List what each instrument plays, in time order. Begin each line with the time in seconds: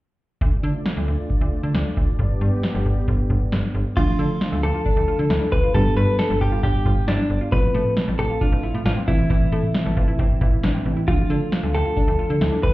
0.41 fm bass D2, analog synth pad A3 D4 F4 D5, kick
0.63 fm bass D3
0.86 snare
0.97 fm bass D2
1.08 fm bass D2
1.30 kick
1.41 fm bass D2
1.63 fm bass D3
1.74 fm bass D2, snare
1.97 fm bass D2, kick
2.19 fm bass G1, analog synth pad B3 G4, kick
2.41 fm bass G2
2.63 snare
2.75 fm bass G1
2.86 fm bass G1, kick
3.08 fm bass G1, kick
3.30 fm bass G1, kick
3.52 fm bass G1, snare
3.74 fm bass G1
3.97 fm bass D2, synth keys F3 A3 D4 F4, synth arpeggio sound F4, clean electric guitar F4, kick, crash
4.19 fm bass D3, synth arpeggio sound A4
4.41 snare
4.52 fm bass D2, synth arpeggio sound A4
4.63 fm bass D2, synth arpeggio sound G4, clean electric guitar A4
4.74 synth arpeggio sound F4
4.86 synth arpeggio sound D4, kick
4.97 fm bass D2
5.08 synth arpeggio sound F4
5.19 fm bass D3
5.30 fm bass D2, synth arpeggio sound E4, snare
5.41 synth arpeggio sound D4
5.52 fm bass D2, clean electric guitar B4, kick
5.63 synth arpeggio sound F4
5.74 fm bass G1, synth keys G3 B3 D4 G4, synth arpeggio sound G4, clean electric guitar A4, kick
5.97 fm bass G2, synth arpeggio sound A4, clean electric guitar B4
6.19 clean electric guitar A4, snare
6.30 fm bass G1, synth arpeggio sound A4
6.41 fm bass G1, synth arpeggio sound G4, clean electric guitar G4, kick
6.52 synth arpeggio sound F4
6.63 fm bass G1, synth arpeggio sound D4, clean electric guitar G4, kick
6.86 fm bass G1, synth arpeggio sound F4, kick
7.08 fm bass G1, clean electric guitar D4, synth arpeggio sound E4, snare
7.19 synth arpeggio sound D4
7.30 fm bass G1
7.41 synth arpeggio sound F4
7.52 fm bass A1, synth keys F3 A3 C4 F4, synth arpeggio sound F4, clean electric guitar B4, kick
7.74 fm bass A2, synth arpeggio sound A4
7.97 snare
8.08 fm bass A1, synth arpeggio sound A4
8.19 fm bass A1, synth arpeggio sound G4, clean electric guitar A4
8.30 synth arpeggio sound F4
8.41 synth arpeggio sound D4, clean electric guitar F4, kick
8.52 fm bass A1
8.63 synth arpeggio sound E4
8.74 fm bass A2
8.86 fm bass A1, synth arpeggio sound D4, clean electric guitar F4, snare
8.97 synth arpeggio sound C4
9.08 fm bass A1, synth keys E3 A3 C4 E4, clean electric guitar E4, kick
9.19 synth arpeggio sound E4
9.30 fm bass A1, synth arpeggio sound E4, kick
9.52 fm bass A2, synth arpeggio sound A4
9.74 snare
9.86 fm bass A1, synth arpeggio sound A4
9.97 fm bass A1, synth arpeggio sound F4, synth keys B5, kick
10.04 synth arpeggio sound E4, synth keys A5
10.19 fm bass A1, synth arpeggio sound C4, synth keys G5, kick
10.41 fm bass A1, synth arpeggio sound E4, synth keys F5, kick
10.63 fm bass A1, synth arpeggio sound D4, synth keys E5, snare
10.74 synth arpeggio sound C4
10.86 fm bass A1, synth keys E3 A3 C4 E4
10.93 synth arpeggio sound E4, synth keys G5
11.08 fm bass D2, synth keys F3 A3 D4 F4, synth arpeggio sound F4, clean electric guitar F4, kick
11.30 fm bass D3, synth arpeggio sound A4
11.52 snare
11.63 fm bass D2, synth arpeggio sound A4
11.74 fm bass D2, synth arpeggio sound G4, clean electric guitar A4
11.86 synth arpeggio sound F4
11.97 synth arpeggio sound D4, kick
12.08 fm bass D2
12.19 synth arpeggio sound F4
12.30 fm bass D3
12.41 fm bass D2, synth arpeggio sound E4, snare
12.52 synth arpeggio sound D4
12.63 fm bass D2, clean electric guitar B4, kick